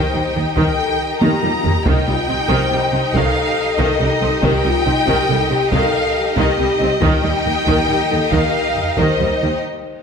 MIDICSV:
0, 0, Header, 1, 9, 480
1, 0, Start_track
1, 0, Tempo, 429799
1, 2076, Time_signature, 12, 3, 24, 8
1, 6393, Tempo, 436047
1, 11128, End_track
2, 0, Start_track
2, 0, Title_t, "Violin section"
2, 0, Program_c, 0, 48
2, 0, Note_on_c, 0, 79, 81
2, 603, Note_off_c, 0, 79, 0
2, 636, Note_on_c, 0, 79, 92
2, 1341, Note_off_c, 0, 79, 0
2, 1358, Note_on_c, 0, 82, 83
2, 2064, Note_off_c, 0, 82, 0
2, 2077, Note_on_c, 0, 79, 99
2, 3510, Note_on_c, 0, 77, 98
2, 3514, Note_off_c, 0, 79, 0
2, 4229, Note_on_c, 0, 75, 87
2, 4231, Note_off_c, 0, 77, 0
2, 4947, Note_on_c, 0, 79, 105
2, 4950, Note_off_c, 0, 75, 0
2, 6389, Note_on_c, 0, 77, 99
2, 6392, Note_off_c, 0, 79, 0
2, 7092, Note_off_c, 0, 77, 0
2, 7097, Note_on_c, 0, 75, 88
2, 7803, Note_off_c, 0, 75, 0
2, 7811, Note_on_c, 0, 79, 103
2, 9243, Note_on_c, 0, 77, 91
2, 9245, Note_off_c, 0, 79, 0
2, 9962, Note_on_c, 0, 75, 79
2, 9969, Note_off_c, 0, 77, 0
2, 10700, Note_off_c, 0, 75, 0
2, 11128, End_track
3, 0, Start_track
3, 0, Title_t, "Violin section"
3, 0, Program_c, 1, 48
3, 0, Note_on_c, 1, 67, 48
3, 0, Note_on_c, 1, 75, 46
3, 2030, Note_off_c, 1, 75, 0
3, 2032, Note_off_c, 1, 67, 0
3, 2075, Note_on_c, 1, 67, 63
3, 2076, Note_on_c, 1, 75, 61
3, 7778, Note_off_c, 1, 67, 0
3, 7779, Note_off_c, 1, 75, 0
3, 7824, Note_on_c, 1, 75, 70
3, 7828, Note_on_c, 1, 67, 67
3, 10662, Note_off_c, 1, 75, 0
3, 10664, Note_off_c, 1, 67, 0
3, 11128, End_track
4, 0, Start_track
4, 0, Title_t, "French horn section"
4, 0, Program_c, 2, 60
4, 0, Note_on_c, 2, 72, 68
4, 453, Note_off_c, 2, 72, 0
4, 642, Note_on_c, 2, 70, 66
4, 873, Note_off_c, 2, 70, 0
4, 884, Note_on_c, 2, 69, 61
4, 1118, Note_off_c, 2, 69, 0
4, 1121, Note_on_c, 2, 70, 61
4, 1358, Note_off_c, 2, 70, 0
4, 1358, Note_on_c, 2, 67, 82
4, 1592, Note_off_c, 2, 67, 0
4, 1600, Note_on_c, 2, 65, 67
4, 1838, Note_off_c, 2, 65, 0
4, 1846, Note_on_c, 2, 67, 69
4, 2077, Note_on_c, 2, 63, 63
4, 2081, Note_off_c, 2, 67, 0
4, 2316, Note_off_c, 2, 63, 0
4, 2318, Note_on_c, 2, 65, 63
4, 2550, Note_on_c, 2, 67, 68
4, 2551, Note_off_c, 2, 65, 0
4, 2792, Note_off_c, 2, 67, 0
4, 2797, Note_on_c, 2, 72, 66
4, 3515, Note_off_c, 2, 72, 0
4, 3519, Note_on_c, 2, 69, 78
4, 4955, Note_off_c, 2, 69, 0
4, 4957, Note_on_c, 2, 67, 66
4, 5195, Note_off_c, 2, 67, 0
4, 5198, Note_on_c, 2, 65, 68
4, 5434, Note_on_c, 2, 63, 71
4, 5435, Note_off_c, 2, 65, 0
4, 5668, Note_off_c, 2, 63, 0
4, 5670, Note_on_c, 2, 67, 70
4, 5895, Note_on_c, 2, 69, 67
4, 5911, Note_off_c, 2, 67, 0
4, 6129, Note_on_c, 2, 67, 76
4, 6139, Note_off_c, 2, 69, 0
4, 6363, Note_on_c, 2, 69, 74
4, 6382, Note_off_c, 2, 67, 0
4, 7092, Note_on_c, 2, 67, 84
4, 7093, Note_off_c, 2, 69, 0
4, 7806, Note_on_c, 2, 63, 69
4, 7815, Note_off_c, 2, 67, 0
4, 8524, Note_on_c, 2, 70, 75
4, 8528, Note_off_c, 2, 63, 0
4, 8758, Note_on_c, 2, 67, 60
4, 8768, Note_off_c, 2, 70, 0
4, 8994, Note_on_c, 2, 69, 70
4, 8999, Note_off_c, 2, 67, 0
4, 9237, Note_off_c, 2, 69, 0
4, 9241, Note_on_c, 2, 70, 67
4, 9778, Note_off_c, 2, 70, 0
4, 9965, Note_on_c, 2, 72, 79
4, 10687, Note_off_c, 2, 72, 0
4, 11128, End_track
5, 0, Start_track
5, 0, Title_t, "Viola section"
5, 0, Program_c, 3, 48
5, 0, Note_on_c, 3, 51, 71
5, 0, Note_on_c, 3, 63, 51
5, 144, Note_off_c, 3, 51, 0
5, 147, Note_on_c, 3, 55, 49
5, 236, Note_off_c, 3, 55, 0
5, 393, Note_on_c, 3, 58, 50
5, 482, Note_off_c, 3, 58, 0
5, 630, Note_on_c, 3, 51, 63
5, 855, Note_off_c, 3, 51, 0
5, 1348, Note_on_c, 3, 51, 72
5, 1575, Note_off_c, 3, 51, 0
5, 1600, Note_on_c, 3, 55, 54
5, 1689, Note_off_c, 3, 55, 0
5, 1839, Note_on_c, 3, 58, 56
5, 1928, Note_off_c, 3, 58, 0
5, 2031, Note_off_c, 3, 63, 0
5, 2073, Note_on_c, 3, 63, 63
5, 2074, Note_on_c, 3, 51, 75
5, 2298, Note_off_c, 3, 51, 0
5, 2320, Note_on_c, 3, 55, 44
5, 2409, Note_off_c, 3, 55, 0
5, 2555, Note_on_c, 3, 60, 45
5, 2644, Note_off_c, 3, 60, 0
5, 2782, Note_on_c, 3, 51, 83
5, 3011, Note_off_c, 3, 51, 0
5, 3034, Note_on_c, 3, 55, 53
5, 3124, Note_off_c, 3, 55, 0
5, 3267, Note_on_c, 3, 60, 48
5, 3357, Note_off_c, 3, 60, 0
5, 3520, Note_on_c, 3, 51, 73
5, 3740, Note_off_c, 3, 51, 0
5, 4222, Note_on_c, 3, 51, 86
5, 4450, Note_off_c, 3, 51, 0
5, 4466, Note_on_c, 3, 55, 68
5, 4555, Note_off_c, 3, 55, 0
5, 4708, Note_on_c, 3, 60, 68
5, 4798, Note_off_c, 3, 60, 0
5, 4953, Note_on_c, 3, 51, 81
5, 5176, Note_off_c, 3, 51, 0
5, 5179, Note_on_c, 3, 55, 53
5, 5269, Note_off_c, 3, 55, 0
5, 5427, Note_on_c, 3, 60, 52
5, 5516, Note_off_c, 3, 60, 0
5, 5663, Note_on_c, 3, 51, 76
5, 5890, Note_off_c, 3, 51, 0
5, 5915, Note_on_c, 3, 55, 58
5, 6004, Note_off_c, 3, 55, 0
5, 6153, Note_on_c, 3, 60, 57
5, 6242, Note_off_c, 3, 60, 0
5, 6401, Note_on_c, 3, 51, 69
5, 6619, Note_off_c, 3, 51, 0
5, 7106, Note_on_c, 3, 51, 83
5, 7329, Note_off_c, 3, 51, 0
5, 7345, Note_on_c, 3, 55, 64
5, 7433, Note_off_c, 3, 55, 0
5, 7592, Note_on_c, 3, 60, 69
5, 7680, Note_off_c, 3, 60, 0
5, 7777, Note_off_c, 3, 63, 0
5, 7823, Note_on_c, 3, 51, 86
5, 7824, Note_on_c, 3, 63, 61
5, 8045, Note_off_c, 3, 51, 0
5, 8066, Note_on_c, 3, 55, 55
5, 8154, Note_off_c, 3, 55, 0
5, 8305, Note_on_c, 3, 58, 56
5, 8393, Note_off_c, 3, 58, 0
5, 8529, Note_on_c, 3, 51, 79
5, 8754, Note_off_c, 3, 51, 0
5, 8778, Note_on_c, 3, 55, 46
5, 8866, Note_off_c, 3, 55, 0
5, 9009, Note_on_c, 3, 58, 55
5, 9097, Note_off_c, 3, 58, 0
5, 9255, Note_on_c, 3, 51, 64
5, 9476, Note_off_c, 3, 51, 0
5, 9984, Note_on_c, 3, 51, 75
5, 10205, Note_off_c, 3, 51, 0
5, 10222, Note_on_c, 3, 55, 57
5, 10310, Note_off_c, 3, 55, 0
5, 10467, Note_on_c, 3, 58, 56
5, 10555, Note_off_c, 3, 58, 0
5, 10662, Note_off_c, 3, 63, 0
5, 11128, End_track
6, 0, Start_track
6, 0, Title_t, "Cello section"
6, 0, Program_c, 4, 48
6, 153, Note_on_c, 4, 51, 48
6, 242, Note_off_c, 4, 51, 0
6, 395, Note_on_c, 4, 51, 53
6, 485, Note_off_c, 4, 51, 0
6, 637, Note_on_c, 4, 51, 71
6, 726, Note_off_c, 4, 51, 0
6, 1354, Note_on_c, 4, 51, 75
6, 1443, Note_off_c, 4, 51, 0
6, 1593, Note_on_c, 4, 51, 53
6, 1683, Note_off_c, 4, 51, 0
6, 1829, Note_on_c, 4, 51, 50
6, 1919, Note_off_c, 4, 51, 0
6, 2071, Note_on_c, 4, 48, 77
6, 2160, Note_off_c, 4, 48, 0
6, 2312, Note_on_c, 4, 48, 45
6, 2402, Note_off_c, 4, 48, 0
6, 2548, Note_on_c, 4, 48, 52
6, 2638, Note_off_c, 4, 48, 0
6, 2791, Note_on_c, 4, 48, 77
6, 2880, Note_off_c, 4, 48, 0
6, 3022, Note_on_c, 4, 48, 55
6, 3111, Note_off_c, 4, 48, 0
6, 3261, Note_on_c, 4, 48, 59
6, 3350, Note_off_c, 4, 48, 0
6, 3504, Note_on_c, 4, 48, 76
6, 3594, Note_off_c, 4, 48, 0
6, 4223, Note_on_c, 4, 48, 88
6, 4313, Note_off_c, 4, 48, 0
6, 4461, Note_on_c, 4, 48, 62
6, 4551, Note_off_c, 4, 48, 0
6, 4707, Note_on_c, 4, 48, 56
6, 4796, Note_off_c, 4, 48, 0
6, 4946, Note_on_c, 4, 48, 70
6, 5035, Note_off_c, 4, 48, 0
6, 5188, Note_on_c, 4, 48, 53
6, 5278, Note_off_c, 4, 48, 0
6, 5423, Note_on_c, 4, 48, 57
6, 5512, Note_off_c, 4, 48, 0
6, 5668, Note_on_c, 4, 48, 77
6, 5757, Note_off_c, 4, 48, 0
6, 5907, Note_on_c, 4, 48, 62
6, 5996, Note_off_c, 4, 48, 0
6, 6148, Note_on_c, 4, 48, 61
6, 6238, Note_off_c, 4, 48, 0
6, 6388, Note_on_c, 4, 48, 72
6, 6476, Note_off_c, 4, 48, 0
6, 7097, Note_on_c, 4, 48, 85
6, 7185, Note_off_c, 4, 48, 0
6, 7336, Note_on_c, 4, 48, 59
6, 7424, Note_off_c, 4, 48, 0
6, 7575, Note_on_c, 4, 48, 62
6, 7663, Note_off_c, 4, 48, 0
6, 7811, Note_on_c, 4, 51, 79
6, 7899, Note_off_c, 4, 51, 0
6, 8051, Note_on_c, 4, 51, 52
6, 8139, Note_off_c, 4, 51, 0
6, 8294, Note_on_c, 4, 51, 53
6, 8382, Note_off_c, 4, 51, 0
6, 8530, Note_on_c, 4, 51, 75
6, 8618, Note_off_c, 4, 51, 0
6, 8772, Note_on_c, 4, 51, 57
6, 8860, Note_off_c, 4, 51, 0
6, 9010, Note_on_c, 4, 51, 57
6, 9098, Note_off_c, 4, 51, 0
6, 9247, Note_on_c, 4, 51, 75
6, 9336, Note_off_c, 4, 51, 0
6, 9974, Note_on_c, 4, 51, 77
6, 10062, Note_off_c, 4, 51, 0
6, 10221, Note_on_c, 4, 51, 54
6, 10309, Note_off_c, 4, 51, 0
6, 10462, Note_on_c, 4, 51, 50
6, 10550, Note_off_c, 4, 51, 0
6, 11128, End_track
7, 0, Start_track
7, 0, Title_t, "Double bass section"
7, 0, Program_c, 5, 48
7, 153, Note_on_c, 5, 39, 46
7, 242, Note_off_c, 5, 39, 0
7, 398, Note_on_c, 5, 39, 49
7, 487, Note_off_c, 5, 39, 0
7, 633, Note_on_c, 5, 39, 69
7, 722, Note_off_c, 5, 39, 0
7, 1352, Note_on_c, 5, 39, 78
7, 1441, Note_off_c, 5, 39, 0
7, 1601, Note_on_c, 5, 39, 47
7, 1690, Note_off_c, 5, 39, 0
7, 1838, Note_on_c, 5, 39, 55
7, 1927, Note_off_c, 5, 39, 0
7, 2075, Note_on_c, 5, 36, 68
7, 2165, Note_off_c, 5, 36, 0
7, 2316, Note_on_c, 5, 36, 54
7, 2405, Note_off_c, 5, 36, 0
7, 2560, Note_on_c, 5, 36, 57
7, 2649, Note_off_c, 5, 36, 0
7, 2796, Note_on_c, 5, 36, 83
7, 2885, Note_off_c, 5, 36, 0
7, 3038, Note_on_c, 5, 36, 55
7, 3127, Note_off_c, 5, 36, 0
7, 3272, Note_on_c, 5, 36, 52
7, 3362, Note_off_c, 5, 36, 0
7, 3512, Note_on_c, 5, 36, 82
7, 3601, Note_off_c, 5, 36, 0
7, 4229, Note_on_c, 5, 36, 81
7, 4318, Note_off_c, 5, 36, 0
7, 4468, Note_on_c, 5, 36, 62
7, 4557, Note_off_c, 5, 36, 0
7, 4707, Note_on_c, 5, 36, 64
7, 4796, Note_off_c, 5, 36, 0
7, 4944, Note_on_c, 5, 36, 74
7, 5033, Note_off_c, 5, 36, 0
7, 5189, Note_on_c, 5, 36, 63
7, 5279, Note_off_c, 5, 36, 0
7, 5433, Note_on_c, 5, 36, 56
7, 5523, Note_off_c, 5, 36, 0
7, 5670, Note_on_c, 5, 36, 86
7, 5760, Note_off_c, 5, 36, 0
7, 5907, Note_on_c, 5, 36, 62
7, 5996, Note_off_c, 5, 36, 0
7, 6147, Note_on_c, 5, 36, 52
7, 6236, Note_off_c, 5, 36, 0
7, 6391, Note_on_c, 5, 36, 84
7, 6479, Note_off_c, 5, 36, 0
7, 7104, Note_on_c, 5, 36, 89
7, 7192, Note_off_c, 5, 36, 0
7, 7343, Note_on_c, 5, 36, 60
7, 7431, Note_off_c, 5, 36, 0
7, 7583, Note_on_c, 5, 36, 60
7, 7671, Note_off_c, 5, 36, 0
7, 7816, Note_on_c, 5, 39, 75
7, 7904, Note_off_c, 5, 39, 0
7, 8056, Note_on_c, 5, 39, 62
7, 8144, Note_off_c, 5, 39, 0
7, 8293, Note_on_c, 5, 39, 55
7, 8381, Note_off_c, 5, 39, 0
7, 8532, Note_on_c, 5, 39, 88
7, 8620, Note_off_c, 5, 39, 0
7, 8768, Note_on_c, 5, 39, 56
7, 8856, Note_off_c, 5, 39, 0
7, 9008, Note_on_c, 5, 39, 50
7, 9096, Note_off_c, 5, 39, 0
7, 9251, Note_on_c, 5, 39, 78
7, 9339, Note_off_c, 5, 39, 0
7, 9975, Note_on_c, 5, 39, 72
7, 10063, Note_off_c, 5, 39, 0
7, 10213, Note_on_c, 5, 39, 48
7, 10301, Note_off_c, 5, 39, 0
7, 10458, Note_on_c, 5, 39, 49
7, 10546, Note_off_c, 5, 39, 0
7, 11128, End_track
8, 0, Start_track
8, 0, Title_t, "Reverse cymbal"
8, 0, Program_c, 6, 119
8, 10709, Note_on_c, 6, 60, 57
8, 11128, Note_off_c, 6, 60, 0
8, 11128, End_track
9, 0, Start_track
9, 0, Title_t, "Taiko and cinematic ensemble drums"
9, 634, Note_on_c, 9, 41, 78
9, 746, Note_off_c, 9, 41, 0
9, 1356, Note_on_c, 9, 48, 76
9, 1468, Note_off_c, 9, 48, 0
9, 1595, Note_on_c, 9, 48, 82
9, 1707, Note_off_c, 9, 48, 0
9, 1835, Note_on_c, 9, 43, 88
9, 1947, Note_off_c, 9, 43, 0
9, 2077, Note_on_c, 9, 41, 93
9, 2189, Note_off_c, 9, 41, 0
9, 2787, Note_on_c, 9, 41, 80
9, 2898, Note_off_c, 9, 41, 0
9, 3514, Note_on_c, 9, 41, 70
9, 3625, Note_off_c, 9, 41, 0
9, 4231, Note_on_c, 9, 41, 75
9, 4343, Note_off_c, 9, 41, 0
9, 4951, Note_on_c, 9, 41, 95
9, 5062, Note_off_c, 9, 41, 0
9, 5669, Note_on_c, 9, 41, 78
9, 5781, Note_off_c, 9, 41, 0
9, 6389, Note_on_c, 9, 41, 82
9, 6499, Note_off_c, 9, 41, 0
9, 7104, Note_on_c, 9, 41, 74
9, 7214, Note_off_c, 9, 41, 0
9, 7819, Note_on_c, 9, 41, 103
9, 7929, Note_off_c, 9, 41, 0
9, 8534, Note_on_c, 9, 41, 82
9, 8644, Note_off_c, 9, 41, 0
9, 9248, Note_on_c, 9, 41, 72
9, 9358, Note_off_c, 9, 41, 0
9, 9729, Note_on_c, 9, 43, 53
9, 9839, Note_off_c, 9, 43, 0
9, 9970, Note_on_c, 9, 41, 80
9, 10080, Note_off_c, 9, 41, 0
9, 11128, End_track
0, 0, End_of_file